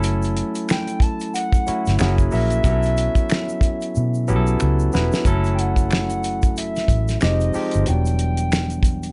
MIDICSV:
0, 0, Header, 1, 6, 480
1, 0, Start_track
1, 0, Tempo, 652174
1, 24, Time_signature, 4, 2, 24, 8
1, 6713, End_track
2, 0, Start_track
2, 0, Title_t, "Soft synth lead"
2, 0, Program_c, 0, 80
2, 517, Note_on_c, 0, 79, 108
2, 752, Note_on_c, 0, 81, 106
2, 763, Note_off_c, 0, 79, 0
2, 983, Note_off_c, 0, 81, 0
2, 988, Note_on_c, 0, 78, 113
2, 1437, Note_off_c, 0, 78, 0
2, 1472, Note_on_c, 0, 78, 99
2, 1575, Note_off_c, 0, 78, 0
2, 1707, Note_on_c, 0, 76, 88
2, 3356, Note_off_c, 0, 76, 0
2, 4078, Note_on_c, 0, 79, 72
2, 4118, Note_on_c, 0, 78, 96
2, 4129, Note_off_c, 0, 79, 0
2, 4831, Note_off_c, 0, 78, 0
2, 4841, Note_on_c, 0, 76, 100
2, 5283, Note_off_c, 0, 76, 0
2, 5319, Note_on_c, 0, 75, 102
2, 5762, Note_off_c, 0, 75, 0
2, 5802, Note_on_c, 0, 79, 111
2, 6713, Note_off_c, 0, 79, 0
2, 6713, End_track
3, 0, Start_track
3, 0, Title_t, "Tine electric piano"
3, 0, Program_c, 1, 4
3, 0, Control_c, 1, 64, 127
3, 0, Note_on_c, 1, 54, 92
3, 0, Note_on_c, 1, 57, 83
3, 0, Note_on_c, 1, 61, 83
3, 0, Note_on_c, 1, 64, 86
3, 0, Note_on_c, 1, 69, 97
3, 657, Note_off_c, 1, 54, 0
3, 659, Note_off_c, 1, 57, 0
3, 660, Note_off_c, 1, 61, 0
3, 662, Note_off_c, 1, 64, 0
3, 664, Note_off_c, 1, 69, 0
3, 1227, Note_on_c, 1, 54, 73
3, 1230, Note_on_c, 1, 57, 67
3, 1233, Note_on_c, 1, 61, 63
3, 1234, Note_on_c, 1, 64, 64
3, 1237, Note_on_c, 1, 66, 76
3, 1457, Note_off_c, 1, 54, 0
3, 1464, Note_off_c, 1, 61, 0
3, 1465, Note_off_c, 1, 64, 0
3, 1466, Note_on_c, 1, 54, 78
3, 1467, Note_off_c, 1, 57, 0
3, 1469, Note_on_c, 1, 58, 73
3, 1471, Note_off_c, 1, 66, 0
3, 1473, Note_on_c, 1, 61, 70
3, 1474, Control_c, 1, 64, 0
3, 1474, Note_on_c, 1, 64, 67
3, 1478, Note_on_c, 1, 68, 83
3, 1606, Control_c, 1, 64, 127
3, 1683, Note_off_c, 1, 54, 0
3, 1684, Note_off_c, 1, 58, 0
3, 1686, Note_off_c, 1, 61, 0
3, 1687, Note_off_c, 1, 64, 0
3, 1689, Note_off_c, 1, 68, 0
3, 1704, Note_on_c, 1, 54, 68
3, 1707, Note_on_c, 1, 58, 55
3, 1711, Note_on_c, 1, 61, 56
3, 1713, Note_on_c, 1, 64, 56
3, 1717, Note_on_c, 1, 70, 67
3, 1922, Note_off_c, 1, 54, 0
3, 1923, Note_off_c, 1, 58, 0
3, 1925, Note_off_c, 1, 61, 0
3, 1926, Note_off_c, 1, 64, 0
3, 1928, Note_off_c, 1, 70, 0
3, 1942, Note_on_c, 1, 54, 72
3, 1945, Note_on_c, 1, 59, 66
3, 1949, Note_on_c, 1, 61, 67
3, 1952, Note_on_c, 1, 64, 66
3, 1954, Note_on_c, 1, 67, 68
3, 1955, Control_c, 1, 64, 0
3, 2003, Note_on_c, 1, 69, 76
3, 2005, Note_off_c, 1, 67, 0
3, 2096, Control_c, 1, 64, 127
3, 2813, Note_off_c, 1, 54, 0
3, 2815, Note_off_c, 1, 59, 0
3, 2817, Note_off_c, 1, 61, 0
3, 2818, Note_off_c, 1, 64, 0
3, 2844, Note_off_c, 1, 69, 0
3, 3149, Note_on_c, 1, 54, 89
3, 3151, Note_on_c, 1, 59, 80
3, 3153, Note_on_c, 1, 61, 77
3, 3157, Note_on_c, 1, 64, 79
3, 3159, Note_on_c, 1, 67, 75
3, 3207, Note_on_c, 1, 69, 98
3, 3208, Note_off_c, 1, 67, 0
3, 3582, Note_off_c, 1, 54, 0
3, 3583, Note_off_c, 1, 59, 0
3, 3584, Note_off_c, 1, 61, 0
3, 3586, Note_off_c, 1, 64, 0
3, 3611, Note_off_c, 1, 69, 0
3, 3629, Note_on_c, 1, 54, 69
3, 3633, Note_on_c, 1, 59, 64
3, 3635, Note_on_c, 1, 61, 62
3, 3639, Note_on_c, 1, 64, 68
3, 3641, Note_on_c, 1, 71, 79
3, 3844, Note_off_c, 1, 54, 0
3, 3846, Note_off_c, 1, 59, 0
3, 3847, Note_off_c, 1, 61, 0
3, 3849, Note_off_c, 1, 64, 0
3, 3850, Note_off_c, 1, 71, 0
3, 3869, Note_on_c, 1, 54, 82
3, 3870, Note_on_c, 1, 57, 73
3, 3873, Note_on_c, 1, 61, 73
3, 3874, Control_c, 1, 64, 0
3, 3877, Note_on_c, 1, 64, 71
3, 3880, Note_on_c, 1, 69, 91
3, 4004, Control_c, 1, 64, 127
3, 4737, Note_off_c, 1, 54, 0
3, 4737, Note_off_c, 1, 57, 0
3, 4739, Note_off_c, 1, 61, 0
3, 4741, Note_off_c, 1, 64, 0
3, 4742, Note_off_c, 1, 69, 0
3, 5306, Note_on_c, 1, 53, 78
3, 5311, Note_on_c, 1, 56, 72
3, 5313, Control_c, 1, 64, 0
3, 5313, Note_on_c, 1, 60, 68
3, 5316, Note_on_c, 1, 63, 66
3, 5318, Note_on_c, 1, 67, 83
3, 5460, Control_c, 1, 64, 127
3, 5523, Note_off_c, 1, 53, 0
3, 5525, Note_off_c, 1, 56, 0
3, 5526, Note_off_c, 1, 60, 0
3, 5528, Note_off_c, 1, 63, 0
3, 5529, Note_off_c, 1, 67, 0
3, 5548, Note_on_c, 1, 53, 72
3, 5552, Note_on_c, 1, 56, 65
3, 5555, Note_on_c, 1, 60, 62
3, 5558, Note_on_c, 1, 63, 56
3, 5559, Note_on_c, 1, 67, 73
3, 5764, Note_off_c, 1, 53, 0
3, 5766, Note_off_c, 1, 56, 0
3, 5767, Note_off_c, 1, 60, 0
3, 5769, Note_off_c, 1, 63, 0
3, 5769, Note_off_c, 1, 67, 0
3, 5784, Note_on_c, 1, 52, 63
3, 5788, Note_on_c, 1, 54, 80
3, 5792, Note_on_c, 1, 59, 65
3, 5793, Control_c, 1, 64, 0
3, 5794, Note_on_c, 1, 62, 59
3, 5837, Note_on_c, 1, 55, 69
3, 5906, Control_c, 1, 64, 127
3, 6655, Note_off_c, 1, 52, 0
3, 6658, Note_off_c, 1, 59, 0
3, 6659, Note_off_c, 1, 62, 0
3, 6661, Note_off_c, 1, 54, 0
3, 6681, Note_off_c, 1, 55, 0
3, 6713, End_track
4, 0, Start_track
4, 0, Title_t, "Fingered electric bass"
4, 0, Program_c, 2, 33
4, 0, Note_on_c, 2, 30, 97
4, 302, Note_off_c, 2, 30, 0
4, 1379, Note_on_c, 2, 31, 82
4, 1455, Note_off_c, 2, 31, 0
4, 1479, Note_on_c, 2, 30, 109
4, 1672, Note_off_c, 2, 30, 0
4, 1718, Note_on_c, 2, 34, 74
4, 1911, Note_off_c, 2, 34, 0
4, 1953, Note_on_c, 2, 35, 108
4, 2264, Note_off_c, 2, 35, 0
4, 2922, Note_on_c, 2, 47, 93
4, 3162, Note_on_c, 2, 35, 78
4, 3173, Note_off_c, 2, 47, 0
4, 3353, Note_off_c, 2, 35, 0
4, 3401, Note_on_c, 2, 37, 82
4, 3593, Note_off_c, 2, 37, 0
4, 3643, Note_on_c, 2, 28, 80
4, 3752, Note_off_c, 2, 28, 0
4, 3873, Note_on_c, 2, 30, 92
4, 5039, Note_off_c, 2, 30, 0
4, 5076, Note_on_c, 2, 33, 71
4, 5270, Note_off_c, 2, 33, 0
4, 5321, Note_on_c, 2, 29, 99
4, 5513, Note_off_c, 2, 29, 0
4, 5706, Note_on_c, 2, 31, 78
4, 5780, Note_off_c, 2, 31, 0
4, 5804, Note_on_c, 2, 28, 93
4, 6713, Note_off_c, 2, 28, 0
4, 6713, End_track
5, 0, Start_track
5, 0, Title_t, "Muted fingered electric bass strokes"
5, 1241, Note_on_c, 9, 29, 42
5, 1314, Note_off_c, 9, 29, 0
5, 5562, Note_on_c, 9, 29, 44
5, 5636, Note_off_c, 9, 29, 0
5, 6713, End_track
6, 0, Start_track
6, 0, Title_t, "Drums"
6, 25, Note_on_c, 9, 82, 61
6, 28, Note_on_c, 9, 42, 81
6, 98, Note_off_c, 9, 82, 0
6, 101, Note_off_c, 9, 42, 0
6, 165, Note_on_c, 9, 82, 41
6, 182, Note_on_c, 9, 42, 37
6, 238, Note_off_c, 9, 82, 0
6, 255, Note_off_c, 9, 42, 0
6, 269, Note_on_c, 9, 42, 61
6, 343, Note_off_c, 9, 42, 0
6, 405, Note_on_c, 9, 82, 43
6, 407, Note_on_c, 9, 42, 47
6, 478, Note_off_c, 9, 82, 0
6, 481, Note_off_c, 9, 42, 0
6, 506, Note_on_c, 9, 26, 63
6, 506, Note_on_c, 9, 82, 64
6, 517, Note_off_c, 9, 26, 0
6, 517, Note_on_c, 9, 26, 86
6, 522, Note_on_c, 9, 38, 113
6, 580, Note_off_c, 9, 82, 0
6, 591, Note_off_c, 9, 26, 0
6, 596, Note_off_c, 9, 38, 0
6, 644, Note_on_c, 9, 42, 36
6, 647, Note_on_c, 9, 82, 37
6, 718, Note_off_c, 9, 42, 0
6, 721, Note_off_c, 9, 82, 0
6, 736, Note_on_c, 9, 36, 90
6, 750, Note_on_c, 9, 42, 64
6, 810, Note_off_c, 9, 36, 0
6, 824, Note_off_c, 9, 42, 0
6, 885, Note_on_c, 9, 82, 44
6, 893, Note_on_c, 9, 42, 45
6, 958, Note_off_c, 9, 82, 0
6, 967, Note_off_c, 9, 42, 0
6, 990, Note_on_c, 9, 82, 56
6, 998, Note_on_c, 9, 42, 88
6, 1064, Note_off_c, 9, 82, 0
6, 1072, Note_off_c, 9, 42, 0
6, 1122, Note_on_c, 9, 36, 87
6, 1130, Note_on_c, 9, 82, 49
6, 1137, Note_on_c, 9, 42, 32
6, 1196, Note_off_c, 9, 36, 0
6, 1204, Note_off_c, 9, 82, 0
6, 1210, Note_off_c, 9, 42, 0
6, 1228, Note_on_c, 9, 82, 42
6, 1235, Note_on_c, 9, 42, 59
6, 1302, Note_off_c, 9, 82, 0
6, 1309, Note_off_c, 9, 42, 0
6, 1367, Note_on_c, 9, 82, 36
6, 1379, Note_on_c, 9, 42, 44
6, 1382, Note_on_c, 9, 38, 29
6, 1441, Note_off_c, 9, 82, 0
6, 1452, Note_off_c, 9, 42, 0
6, 1456, Note_off_c, 9, 38, 0
6, 1464, Note_on_c, 9, 26, 61
6, 1464, Note_on_c, 9, 82, 60
6, 1477, Note_off_c, 9, 26, 0
6, 1477, Note_on_c, 9, 26, 74
6, 1482, Note_on_c, 9, 38, 107
6, 1537, Note_off_c, 9, 82, 0
6, 1550, Note_off_c, 9, 26, 0
6, 1555, Note_off_c, 9, 38, 0
6, 1607, Note_on_c, 9, 36, 81
6, 1607, Note_on_c, 9, 82, 37
6, 1617, Note_on_c, 9, 42, 31
6, 1681, Note_off_c, 9, 36, 0
6, 1681, Note_off_c, 9, 82, 0
6, 1691, Note_off_c, 9, 42, 0
6, 1702, Note_on_c, 9, 82, 42
6, 1728, Note_on_c, 9, 46, 42
6, 1776, Note_off_c, 9, 82, 0
6, 1802, Note_off_c, 9, 46, 0
6, 1843, Note_on_c, 9, 42, 50
6, 1848, Note_on_c, 9, 82, 46
6, 1916, Note_off_c, 9, 42, 0
6, 1922, Note_off_c, 9, 82, 0
6, 1943, Note_on_c, 9, 36, 107
6, 1944, Note_on_c, 9, 82, 65
6, 1949, Note_on_c, 9, 42, 80
6, 2017, Note_off_c, 9, 36, 0
6, 2018, Note_off_c, 9, 82, 0
6, 2022, Note_off_c, 9, 42, 0
6, 2081, Note_on_c, 9, 82, 42
6, 2104, Note_on_c, 9, 42, 32
6, 2155, Note_off_c, 9, 82, 0
6, 2177, Note_off_c, 9, 42, 0
6, 2185, Note_on_c, 9, 82, 43
6, 2192, Note_on_c, 9, 42, 70
6, 2258, Note_off_c, 9, 82, 0
6, 2266, Note_off_c, 9, 42, 0
6, 2321, Note_on_c, 9, 36, 87
6, 2324, Note_on_c, 9, 82, 45
6, 2326, Note_on_c, 9, 42, 47
6, 2394, Note_off_c, 9, 36, 0
6, 2398, Note_off_c, 9, 82, 0
6, 2400, Note_off_c, 9, 42, 0
6, 2426, Note_on_c, 9, 26, 56
6, 2426, Note_on_c, 9, 82, 61
6, 2440, Note_off_c, 9, 26, 0
6, 2440, Note_on_c, 9, 26, 100
6, 2445, Note_on_c, 9, 38, 118
6, 2500, Note_off_c, 9, 82, 0
6, 2513, Note_off_c, 9, 26, 0
6, 2518, Note_off_c, 9, 38, 0
6, 2568, Note_on_c, 9, 82, 38
6, 2641, Note_off_c, 9, 82, 0
6, 2657, Note_on_c, 9, 36, 94
6, 2666, Note_on_c, 9, 82, 43
6, 2671, Note_on_c, 9, 42, 64
6, 2730, Note_off_c, 9, 36, 0
6, 2739, Note_off_c, 9, 82, 0
6, 2744, Note_off_c, 9, 42, 0
6, 2805, Note_on_c, 9, 82, 45
6, 2813, Note_on_c, 9, 42, 41
6, 2879, Note_off_c, 9, 82, 0
6, 2886, Note_off_c, 9, 42, 0
6, 2909, Note_on_c, 9, 82, 52
6, 2983, Note_off_c, 9, 82, 0
6, 3049, Note_on_c, 9, 82, 46
6, 3123, Note_off_c, 9, 82, 0
6, 3149, Note_on_c, 9, 82, 43
6, 3223, Note_off_c, 9, 82, 0
6, 3289, Note_on_c, 9, 82, 40
6, 3362, Note_off_c, 9, 82, 0
6, 3385, Note_on_c, 9, 26, 58
6, 3385, Note_on_c, 9, 82, 60
6, 3459, Note_off_c, 9, 26, 0
6, 3459, Note_off_c, 9, 82, 0
6, 3529, Note_on_c, 9, 82, 36
6, 3603, Note_off_c, 9, 82, 0
6, 3624, Note_on_c, 9, 82, 44
6, 3643, Note_on_c, 9, 38, 99
6, 3698, Note_off_c, 9, 82, 0
6, 3716, Note_off_c, 9, 38, 0
6, 3769, Note_on_c, 9, 82, 47
6, 3781, Note_on_c, 9, 38, 88
6, 3843, Note_off_c, 9, 82, 0
6, 3855, Note_off_c, 9, 38, 0
6, 3864, Note_on_c, 9, 36, 96
6, 3868, Note_on_c, 9, 42, 73
6, 3869, Note_on_c, 9, 82, 66
6, 3938, Note_off_c, 9, 36, 0
6, 3942, Note_off_c, 9, 42, 0
6, 3942, Note_off_c, 9, 82, 0
6, 4006, Note_on_c, 9, 82, 40
6, 4022, Note_on_c, 9, 42, 33
6, 4079, Note_off_c, 9, 82, 0
6, 4095, Note_off_c, 9, 42, 0
6, 4111, Note_on_c, 9, 42, 60
6, 4185, Note_off_c, 9, 42, 0
6, 4241, Note_on_c, 9, 36, 82
6, 4247, Note_on_c, 9, 42, 42
6, 4248, Note_on_c, 9, 82, 39
6, 4315, Note_off_c, 9, 36, 0
6, 4320, Note_off_c, 9, 42, 0
6, 4322, Note_off_c, 9, 82, 0
6, 4347, Note_on_c, 9, 26, 57
6, 4347, Note_on_c, 9, 82, 52
6, 4361, Note_off_c, 9, 26, 0
6, 4361, Note_on_c, 9, 26, 90
6, 4366, Note_on_c, 9, 38, 107
6, 4421, Note_off_c, 9, 82, 0
6, 4434, Note_off_c, 9, 26, 0
6, 4439, Note_off_c, 9, 38, 0
6, 4488, Note_on_c, 9, 42, 33
6, 4488, Note_on_c, 9, 82, 41
6, 4561, Note_off_c, 9, 42, 0
6, 4562, Note_off_c, 9, 82, 0
6, 4588, Note_on_c, 9, 82, 37
6, 4594, Note_on_c, 9, 42, 62
6, 4662, Note_off_c, 9, 82, 0
6, 4667, Note_off_c, 9, 42, 0
6, 4727, Note_on_c, 9, 82, 47
6, 4733, Note_on_c, 9, 36, 90
6, 4734, Note_on_c, 9, 42, 40
6, 4801, Note_off_c, 9, 82, 0
6, 4806, Note_off_c, 9, 36, 0
6, 4807, Note_off_c, 9, 42, 0
6, 4833, Note_on_c, 9, 82, 53
6, 4841, Note_on_c, 9, 42, 93
6, 4906, Note_off_c, 9, 82, 0
6, 4914, Note_off_c, 9, 42, 0
6, 4975, Note_on_c, 9, 82, 51
6, 4978, Note_on_c, 9, 42, 31
6, 4984, Note_on_c, 9, 38, 35
6, 5048, Note_off_c, 9, 82, 0
6, 5052, Note_off_c, 9, 42, 0
6, 5058, Note_off_c, 9, 38, 0
6, 5066, Note_on_c, 9, 36, 86
6, 5072, Note_on_c, 9, 42, 62
6, 5072, Note_on_c, 9, 82, 37
6, 5139, Note_off_c, 9, 36, 0
6, 5146, Note_off_c, 9, 42, 0
6, 5146, Note_off_c, 9, 82, 0
6, 5211, Note_on_c, 9, 82, 37
6, 5216, Note_on_c, 9, 42, 45
6, 5220, Note_on_c, 9, 38, 29
6, 5284, Note_off_c, 9, 82, 0
6, 5290, Note_off_c, 9, 42, 0
6, 5293, Note_off_c, 9, 38, 0
6, 5305, Note_on_c, 9, 26, 54
6, 5305, Note_on_c, 9, 82, 58
6, 5315, Note_off_c, 9, 26, 0
6, 5315, Note_on_c, 9, 26, 81
6, 5320, Note_on_c, 9, 38, 105
6, 5379, Note_off_c, 9, 82, 0
6, 5388, Note_off_c, 9, 26, 0
6, 5393, Note_off_c, 9, 38, 0
6, 5449, Note_on_c, 9, 82, 35
6, 5456, Note_on_c, 9, 42, 30
6, 5523, Note_off_c, 9, 82, 0
6, 5530, Note_off_c, 9, 42, 0
6, 5547, Note_on_c, 9, 82, 44
6, 5565, Note_on_c, 9, 46, 38
6, 5621, Note_off_c, 9, 82, 0
6, 5639, Note_off_c, 9, 46, 0
6, 5677, Note_on_c, 9, 42, 48
6, 5692, Note_on_c, 9, 82, 43
6, 5751, Note_off_c, 9, 42, 0
6, 5766, Note_off_c, 9, 82, 0
6, 5785, Note_on_c, 9, 42, 77
6, 5791, Note_on_c, 9, 82, 59
6, 5859, Note_off_c, 9, 42, 0
6, 5865, Note_off_c, 9, 82, 0
6, 5928, Note_on_c, 9, 82, 40
6, 5941, Note_on_c, 9, 42, 32
6, 6002, Note_off_c, 9, 82, 0
6, 6015, Note_off_c, 9, 42, 0
6, 6027, Note_on_c, 9, 42, 61
6, 6101, Note_off_c, 9, 42, 0
6, 6163, Note_on_c, 9, 42, 45
6, 6169, Note_on_c, 9, 82, 43
6, 6237, Note_off_c, 9, 42, 0
6, 6243, Note_off_c, 9, 82, 0
6, 6271, Note_on_c, 9, 26, 59
6, 6271, Note_on_c, 9, 82, 59
6, 6275, Note_off_c, 9, 26, 0
6, 6275, Note_on_c, 9, 26, 88
6, 6280, Note_on_c, 9, 38, 113
6, 6344, Note_off_c, 9, 82, 0
6, 6349, Note_off_c, 9, 26, 0
6, 6354, Note_off_c, 9, 38, 0
6, 6403, Note_on_c, 9, 42, 30
6, 6411, Note_on_c, 9, 82, 39
6, 6476, Note_off_c, 9, 42, 0
6, 6484, Note_off_c, 9, 82, 0
6, 6496, Note_on_c, 9, 36, 84
6, 6507, Note_on_c, 9, 82, 42
6, 6508, Note_on_c, 9, 42, 65
6, 6570, Note_off_c, 9, 36, 0
6, 6581, Note_off_c, 9, 82, 0
6, 6582, Note_off_c, 9, 42, 0
6, 6647, Note_on_c, 9, 82, 45
6, 6649, Note_on_c, 9, 42, 43
6, 6713, Note_off_c, 9, 42, 0
6, 6713, Note_off_c, 9, 82, 0
6, 6713, End_track
0, 0, End_of_file